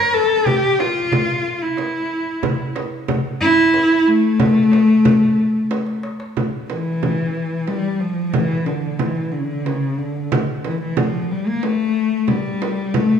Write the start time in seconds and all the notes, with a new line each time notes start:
Already playing: A#4
0.14 A4
0.46 G4, darbuka dum, frame drum
0.79 F4, darbuka tek, frame drum
1.12 darbuka dum, frame drum
1.62 E4
1.77 darbuka tek, frame drum
2.43 darbuka dum, frame drum
2.76 darbuka tek, frame drum
3.08 frame drum, darbuka dum
3.41 E4
3.74 darbuka tek, frame drum
4.07 A3
4.39 darbuka dum, frame drum
4.72 darbuka tek, frame drum
5.05 frame drum, darbuka dum
5.71 darbuka tek, frame drum
5.87 darbuka ka
6.03 darbuka tek
6.20 darbuka ka
6.37 frame drum
6.69 E3, frame drum
7.03 frame drum
7.67 G3, frame drum
7.99 F3
8.33 E3, frame drum
8.65 D3, frame drum
8.99 E3, frame drum
9.32 D3
9.40 C#3
9.45 D3
9.65 C#3, frame drum
9.98 D3
10.32 frame drum
10.64 E3, frame drum
10.81 E3
10.97 F3, frame drum
11.31 G3
11.48 A#3
11.63 A3, frame drum
12.28 G3, frame drum
12.62 frame drum
12.94 A3, frame drum